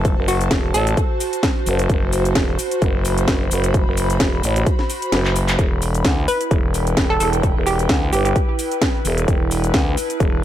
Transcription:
Already playing: F#1 F#4 C5 A5
0.05 kick, closed hi-hat, shaker
0.18 F#1
0.28 F#4, open hi-hat, shaker
0.41 closed hi-hat, shaker
0.51 E1, kick, snare, closed hi-hat, shaker
0.74 A1 A4, open hi-hat, shaker
0.87 closed hi-hat, shaker
0.97 kick, closed hi-hat, shaker
1.20 open hi-hat, shaker
1.33 closed hi-hat, shaker
1.43 kick, snare, closed hi-hat, shaker
1.66 F#1, open hi-hat, shaker
1.79 closed hi-hat, shaker
1.90 F#1, kick, closed hi-hat, shaker
2.13 open hi-hat, shaker
2.25 closed hi-hat, shaker
2.35 E1, kick, snare, closed hi-hat, shaker
2.41 B5
2.59 open hi-hat, shaker
2.71 closed hi-hat, shaker
2.82 F#1, kick, closed hi-hat, shaker
3.05 open hi-hat, shaker
3.18 closed hi-hat, shaker
3.28 F#1, kick, snare, closed hi-hat, shaker
3.51 F#1, open hi-hat, shaker
3.64 closed hi-hat, shaker
3.74 kick, closed hi-hat, shaker
3.87 F#1
3.97 open hi-hat, shaker
4.10 closed hi-hat, shaker
4.20 E1, kick, snare, closed hi-hat, shaker
4.43 A1, open hi-hat, shaker
4.56 closed hi-hat, shaker
4.66 kick, closed hi-hat, shaker
4.79 snare
4.90 open hi-hat, shaker
5.02 closed hi-hat, shaker
5.12 F#1, snare, closed hi-hat, shaker
5.25 clap
5.36 open hi-hat, shaker
5.48 clap, closed hi-hat, shaker
5.59 E1 E4, kick, closed hi-hat, shaker
5.64 B4
5.82 open hi-hat, shaker
5.95 closed hi-hat, shaker
6.05 D2, kick, snare, closed hi-hat, shaker
6.28 B4, open hi-hat, shaker
6.34 G5
6.41 closed hi-hat, shaker
6.51 E1, kick, closed hi-hat, shaker
6.74 open hi-hat, shaker
6.87 closed hi-hat, shaker
6.97 E1, kick, snare, closed hi-hat, shaker
7.10 A4
7.20 E1 A4, open hi-hat, shaker
7.33 closed hi-hat, shaker
7.43 kick, closed hi-hat, shaker
7.56 E1
7.66 G4, open hi-hat, shaker
7.79 closed hi-hat, shaker
7.89 D2, kick, snare, closed hi-hat, shaker
8.13 G1 G4, open hi-hat, shaker
8.25 G4, closed hi-hat, shaker
8.36 kick, closed hi-hat, shaker
8.59 open hi-hat, shaker
8.72 closed hi-hat, shaker
8.82 kick, snare, closed hi-hat, shaker
9.05 E1, open hi-hat, shaker
9.18 closed hi-hat, shaker
9.28 E1, kick, closed hi-hat, shaker
9.51 open hi-hat, shaker
9.64 closed hi-hat, shaker
9.73 D2 A5, kick, snare, closed hi-hat, shaker
9.97 open hi-hat, shaker
10.10 closed hi-hat, shaker
10.20 E1, kick, closed hi-hat, shaker

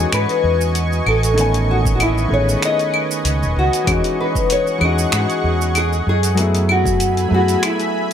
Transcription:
Already playing: E3 G#3 C#4 D#4 F#4 G#4 D#5 G#5 C#6
0.12 G#2 B4, finger snap, open hi-hat, claves, shaker
0.29 open hi-hat, shaker
0.43 E2
0.61 shaker
0.75 open hi-hat, shaker
0.93 shaker
1.06 A1 A4, claves
1.23 open hi-hat, shaker
1.34 D#3 A3 B3 B4, open hi-hat
1.38 C#4 G#5, shaker
1.54 open hi-hat, shaker
1.71 F#4
1.85 kick, shaker
1.95 F#4
2.00 E4, open hi-hat, claves, shaker
2.18 shaker
2.28 A1 D#3 A3 B3
2.33 C#4 G#4 C#5
2.49 shaker
2.62 D#5, finger snap, open hi-hat, shaker
2.79 open hi-hat, shaker
2.94 claves
3.11 shaker
3.25 C#2, open hi-hat, shaker
3.42 E1, shaker
3.56 C#2 F#4
3.73 open hi-hat, shaker
3.84 E2 E3 G#3 C#4 G#4 F#5 C#6, kick, open hi-hat, claves, shaker
3.90 D#4 F#4
4.04 open hi-hat, shaker
4.20 B4
4.35 kick, shaker
4.50 C#5, open hi-hat, shaker
4.67 shaker
4.78 E2 E3 G#3 C#4, claves
4.84 D#4 F#4 D#5
4.99 shaker
5.12 G#2 F#4, finger snap, open hi-hat, shaker
5.30 open hi-hat, shaker
5.44 E2
5.61 shaker
5.75 G#4, open hi-hat, claves, shaker
5.93 shaker
6.07 F#2 G#4
6.23 open hi-hat, shaker
6.35 F#3 A3 B3 E5 G#5 B5, open hi-hat, shaker
6.40 E4 G#4
6.55 open hi-hat, shaker
6.69 F#4, claves
6.85 kick, shaker
7.00 open hi-hat, shaker
7.17 open hi-hat, shaker
7.28 F#2 F#3 A3 B3
7.33 E4 F#4 G#4
7.48 open hi-hat, shaker
7.63 E4, finger snap, open hi-hat, claves, shaker
7.80 open hi-hat, shaker

